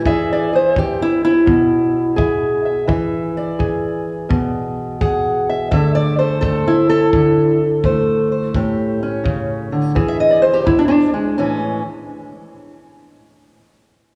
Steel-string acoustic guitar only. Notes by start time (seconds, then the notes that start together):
0.05 E3 G#4 D5 E5
0.33 D5
0.53 G#4 C5
0.78 G4
1.02 E4
1.25 E4
1.46 B2
2.16 G#4 E5
2.65 E5
2.87 E3 E5
3.37 D5
3.59 G#4
4.29 B2
5.01 G#4 F#5
5.50 E5
5.71 D3 A3 A4 E5
5.95 D5
6.19 A4 C5
6.41 A3 A4
6.68 E4
6.89 A4
7.14 D3
7.85 A3 C5
8.32 C5
8.55 A2 G4
9.03 C#4
9.24 C#3
9.72 D3
9.95 E3 G#4
10.08 E5
10.20 D#5
10.31 D5
10.42 C5
10.54 G4
10.65 F#3 E4
10.79 D4
10.88 D4
11.14 G#3
11.38 A2 E3 C#4